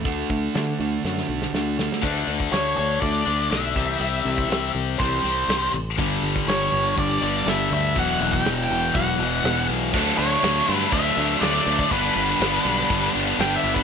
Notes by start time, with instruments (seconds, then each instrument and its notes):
0.04 fingered electric bass D2, clean electric guitar D3 A3 D4 F#4, distorted electric guitar D3 A3 D4, kick, open hi-hat
0.30 fingered electric bass D2, distorted electric guitar D3 A3, kick, open hi-hat
0.54 clean electric guitar D3 A3 D4 F#4, distorted electric guitar D3 A3, fingered electric bass D3, snare, open hi-hat
0.79 fingered electric bass D2, distorted electric guitar D3 A3, clean electric guitar A3 D4 F#4, open hi-hat
1.04 fingered electric bass F#2, clean electric guitar D3 A3 D4 F#4, distorted electric guitar D3 A3, snare
1.18 snare
1.29 fingered electric bass B1, distorted electric guitar D3 A3
1.42 snare
1.53 fingered electric bass D2, clean electric guitar D3 A3 D4 F#4, distorted electric guitar D3 A3, snare
1.78 distorted electric guitar D3 A3, clean electric guitar A3 D4 F#4, snare
1.92 snare
2.02 fingered electric bass D2, distorted electric guitar D3 A3 D4, clean electric guitar D3 A3 D4, kick, crash
2.27 fingered electric bass D2, clean electric guitar D3 A3, open hi-hat
2.40 kick
2.52 fingered electric bass D2, clean electric guitar D3 A3, lead electric guitar C#5, snare, open hi-hat
2.77 fingered electric bass D2, clean electric guitar D3 A3, lead electric guitar C#5, open hi-hat
3.01 fingered electric bass D2, clean electric guitar D3 A3 D4, lead electric guitar D5, kick, open hi-hat
3.25 fingered electric bass D2, clean electric guitar D3 A3, distorted electric guitar D3 A3 D4, open hi-hat
3.49 fingered electric bass B1, distorted electric guitar D3 A3 D4, clean electric guitar D3 A3, lead electric guitar E5, snare, open hi-hat
3.75 fingered electric bass C2, distorted electric guitar C3 G3 C4, clean electric guitar C3 E3 G3, kick, open hi-hat
4.00 fingered electric bass C2, clean electric guitar C3 E3, lead electric guitar E5, open hi-hat
4.25 fingered electric bass C2, clean electric guitar C3 E3 G3, open hi-hat
4.38 kick
4.49 fingered electric bass C2, clean electric guitar C3, snare, open hi-hat
4.75 fingered electric bass C2, clean electric guitar C3 E3, open hi-hat
4.98 fingered electric bass C2, distorted electric guitar C3 G3 C4, clean electric guitar C3 E3 G3, lead electric guitar C5, kick, open hi-hat
5.23 fingered electric bass C2, distorted electric guitar C3 G3 C4, open hi-hat
5.48 fingered electric bass C2, clean electric guitar C3 E3, snare, open hi-hat
5.73 fingered electric bass A1, clean electric guitar C3 E3, open hi-hat
5.98 fingered electric bass G1, distorted electric guitar G2 D3 G3, clean electric guitar G2 D3 G3, kick, open hi-hat
6.22 fingered electric bass G1, clean electric guitar G2 D3, open hi-hat
6.36 kick
6.46 fingered electric bass G1, clean electric guitar G2 D3, lead electric guitar C#5, snare, open hi-hat
6.72 fingered electric bass G1, clean electric guitar G2 D3, open hi-hat
6.97 fingered electric bass G1, clean electric guitar G2 D3 G3, lead electric guitar D5, kick, open hi-hat
7.21 fingered electric bass G1, clean electric guitar G2 D3, distorted electric guitar G2 D3 G3, lead electric guitar D5, open hi-hat
7.46 fingered electric bass G1, clean electric guitar G2 D3, distorted electric guitar G2 D3 G3, lead electric guitar E5, snare, open hi-hat
7.71 fingered electric bass D2, clean electric guitar G2 D3, lead electric guitar E5, open hi-hat
7.94 fingered electric bass E1, clean electric guitar E2 B2 F#3, distorted electric guitar E2 B2 E3, kick, open hi-hat
7.99 lead electric guitar F#5
8.20 fingered electric bass E1, clean electric guitar E2 B2 F#3, open hi-hat
8.32 lead electric guitar G5, kick
8.45 fingered electric bass E1, clean electric guitar E2 B2, snare, open hi-hat
8.64 lead electric guitar G5
8.70 fingered electric bass E1, clean electric guitar E2 B2, open hi-hat
8.95 fingered electric bass E1, clean electric guitar E2 B2 F#3, lead electric guitar F#5, kick, open hi-hat
9.19 fingered electric bass E1, clean electric guitar E2 B2, distorted electric guitar E2 B2 E3, open hi-hat
9.44 fingered electric bass E1, distorted electric guitar E2 B2 E3, clean electric guitar E2 B2, snare, open hi-hat
9.69 fingered electric bass B1, clean electric guitar E2 B2, open hi-hat
9.93 fingered electric bass D2, distorted electric guitar D3 F#3 A3 D4, kick, crash
10.18 fingered electric bass D2, distorted electric guitar F#3 A3 D4, lead electric guitar C#5, crash
10.43 fingered electric bass D2, distorted electric guitar D3 F#3 A3 D4, snare, crash
10.67 fingered electric bass G2, distorted electric guitar D3 F#3 A3 D4, crash
10.75 lead electric guitar B4
10.92 fingered electric bass D2, distorted electric guitar D3 F#3 A3 D4, lead electric guitar E5, kick, crash
11.17 fingered electric bass D2, distorted electric guitar D3 F#3 A3 D4, crash
11.41 fingered electric bass D2, distorted electric guitar D3 F#3 A3 D4, lead electric guitar D5, snare, crash
11.66 fingered electric bass D2, distorted electric guitar F#3 A3 D4, crash
11.79 kick
11.91 fingered electric bass G1, distorted electric guitar G2 D3 G3 B3 D4, lead electric guitar B4, kick, crash
12.16 fingered electric bass G1, distorted electric guitar G3 B3 D4, crash
12.40 fingered electric bass G1, distorted electric guitar G2 D3 G3 B3 D4, snare, crash
12.65 fingered electric bass B1, distorted electric guitar G2 D3 G3 B3 D4, crash
12.89 fingered electric bass G1, distorted electric guitar D3 G3 B3 D4, kick, crash
13.13 fingered electric bass G1, distorted electric guitar G2 D3 G3 B3 D4, crash
13.38 fingered electric bass G1, distorted electric guitar D3 G3 B3 D4, lead electric guitar G5, snare, crash
13.56 lead electric guitar E5
13.63 fingered electric bass G1, distorted electric guitar G3 B3 D4, crash
13.74 lead electric guitar B4, kick